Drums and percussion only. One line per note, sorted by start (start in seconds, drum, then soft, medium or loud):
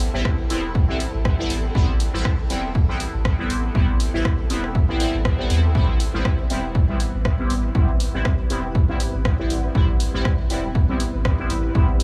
0.00 open hi-hat medium
0.25 kick loud
0.25 cross-stick medium
0.50 open hi-hat medium
0.75 kick loud
1.00 open hi-hat medium
1.25 kick loud
1.25 cross-stick medium
1.50 open hi-hat medium
1.75 kick loud
2.00 open hi-hat medium
2.25 kick loud
2.25 cross-stick medium
2.50 open hi-hat medium
2.75 kick loud
3.00 open hi-hat medium
3.25 kick loud
3.25 cross-stick medium
3.50 open hi-hat medium
3.75 kick loud
4.00 open hi-hat medium
4.25 kick loud
4.25 cross-stick medium
4.50 open hi-hat medium
4.64 cross-stick soft
4.75 kick loud
5.00 open hi-hat medium
5.25 kick loud
5.25 cross-stick medium
5.50 open hi-hat medium
5.75 kick loud
6.00 open hi-hat medium
6.25 kick loud
6.25 cross-stick medium
6.50 open hi-hat medium
6.75 kick loud
7.00 open hi-hat medium
7.25 kick loud
7.25 cross-stick medium
7.50 open hi-hat medium
7.75 kick loud
8.00 open hi-hat medium
8.25 kick loud
8.25 cross-stick medium
8.50 open hi-hat medium
8.75 kick loud
9.00 open hi-hat medium
9.25 kick loud
9.25 cross-stick medium
9.50 open hi-hat medium
9.75 kick loud
10.00 open hi-hat medium
10.25 kick loud
10.25 cross-stick medium
10.50 open hi-hat medium
10.75 kick loud
11.00 open hi-hat medium
11.25 kick loud
11.25 cross-stick medium
11.50 open hi-hat medium
11.75 kick loud
12.00 open hi-hat medium